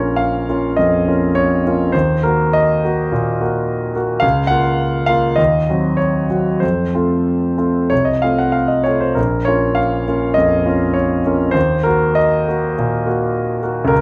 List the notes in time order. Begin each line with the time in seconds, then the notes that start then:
Already playing: A#1 A#3 C#4 F4 A#4 C#5
0.16 F5
0.49 A#3 C#4 F4
0.76 F2 D#5
1.08 A#3 C#4 F4
1.35 C#5
1.66 A#3 C#4 F4
1.92 D#2 C5
2.23 A#3 F#4 A#4
2.53 D#5
2.85 A#3 F#4
3.12 A#2
3.41 A#3 F#4
3.95 A#3 F#4
4.20 C#2 F5
4.47 A#3 F4 F#5
5.06 A#3 F4 F5
5.36 D#2 D#5
5.69 F#3 C4 F#4
5.97 C#5
6.30 F#3 C4 F#4
6.60 F2 C5
6.93 A3 C4 F4
7.57 A3 C4 F4
7.90 C2 C#5
8.05 D#5
8.22 A3 C4 F4 F5
8.38 F#5
8.52 F5
8.68 D#5
8.84 A3 C4 F4 C#5
9.01 C5
9.15 A#1 A#4
9.45 A#3 C#4 F4 C#5
9.75 F5
10.07 A#3 C#4 F4
10.34 F2 D#5
10.65 A#3 C#4 F4
10.94 C#5
11.26 A#3 C#4 F4
11.51 D#2 C5
11.83 A#3 F#4 A#4
12.15 D#5
12.48 A#3 F#4
12.79 A#2
13.06 A#3 F#4
13.63 A#3 F#4
13.85 C#2 A#4